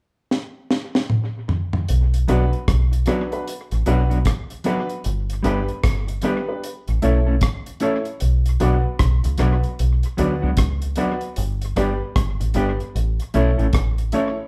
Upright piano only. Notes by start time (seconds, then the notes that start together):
2.28 D4 F#4 B4
3.07 D4 F#4 B4
3.32 D4 F#4 B4
3.86 D4 F#4 B4
4.65 D4 F#4 B4
5.44 D4 G4 B4
6.23 D4 G4 B4
6.48 D4 G4 B4
7.02 E4 A4 C#5
7.81 E4 A4 C#5
8.60 F#4 B4 D5
9.39 F#4 B4 D5
10.18 F#4 B4 D5
10.97 F#4 B4 D5
11.77 G4 B4 D5
12.55 G4 B4 D5
13.34 E4 A4 C#5
14.13 E4 A4 C#5